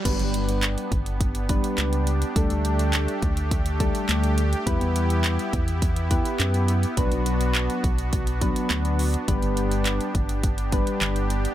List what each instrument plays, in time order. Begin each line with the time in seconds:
0.05 fm bass G1, synth keys G3 B3 D4 B4, supersaw synth B3 D4 G4, kick, closed hi-hat, crash
0.19 fm bass G1, closed hi-hat
0.34 closed hi-hat
0.49 closed hi-hat
0.63 clap, closed hi-hat
0.78 closed hi-hat
0.92 fm bass G1, kick, closed hi-hat
1.06 closed hi-hat
1.21 kick, closed hi-hat
1.35 closed hi-hat
1.49 synth keys G3 B3 D4 B4, kick, closed hi-hat
1.64 closed hi-hat
1.78 fm bass C#2, clap, closed hi-hat
1.93 closed hi-hat
2.07 closed hi-hat
2.22 closed hi-hat
2.36 fm bass D2, synth keys G3 A3 D4 A4, supersaw synth A3, kick, closed hi-hat
2.50 fm bass D2, closed hi-hat
2.65 closed hi-hat
2.79 closed hi-hat
2.93 clap, closed hi-hat
3.08 closed hi-hat
3.22 fm bass D2, kick, closed hi-hat
3.37 closed hi-hat
3.51 kick, closed hi-hat
3.66 closed hi-hat
3.80 synth keys G3 A3 D4 A4, kick, closed hi-hat
3.95 closed hi-hat
4.09 fm bass D2, clap, closed hi-hat
4.24 closed hi-hat
4.38 closed hi-hat
4.53 closed hi-hat
4.66 fm bass E2, synth keys G3 B3 E4 B4, supersaw synth B3 E4, kick, closed hi-hat
4.81 fm bass E2, closed hi-hat
4.96 closed hi-hat
5.10 closed hi-hat
5.24 clap, closed hi-hat
5.39 closed hi-hat
5.53 fm bass E2, kick, closed hi-hat
5.68 closed hi-hat
5.82 kick, closed hi-hat
5.96 closed hi-hat
6.10 synth keys B3 E4 G4 B4, kick, closed hi-hat
6.25 closed hi-hat
6.40 fm bass F#2, clap, closed hi-hat
6.54 closed hi-hat
6.68 closed hi-hat
6.83 closed hi-hat
6.97 fm bass B1, synth keys F#3 B3 D4 B4, supersaw synth D4 F#4, kick, closed hi-hat
7.12 fm bass B1, closed hi-hat
7.26 closed hi-hat
7.41 closed hi-hat
7.55 clap, closed hi-hat
7.70 closed hi-hat
7.84 fm bass B1, kick, closed hi-hat
7.98 closed hi-hat
8.13 kick, closed hi-hat
8.27 closed hi-hat
8.41 synth keys F#3 B3 D4 B4, kick, closed hi-hat
8.56 closed hi-hat
8.71 fm bass D2, clap, closed hi-hat
8.85 closed hi-hat
8.99 open hi-hat
9.14 closed hi-hat
9.28 fm bass G1, synth keys G3 B3 D4 B4, supersaw synth G4, kick, closed hi-hat
9.42 fm bass G1, closed hi-hat
9.57 closed hi-hat
9.71 closed hi-hat
9.86 clap, closed hi-hat
10.01 closed hi-hat
10.15 fm bass G1, kick, closed hi-hat
10.29 closed hi-hat
10.43 kick, closed hi-hat
10.58 closed hi-hat
10.72 synth keys G3 B3 D4 B4, kick, closed hi-hat
10.87 closed hi-hat
11.01 fm bass G1, clap, closed hi-hat
11.16 closed hi-hat
11.30 closed hi-hat
11.45 closed hi-hat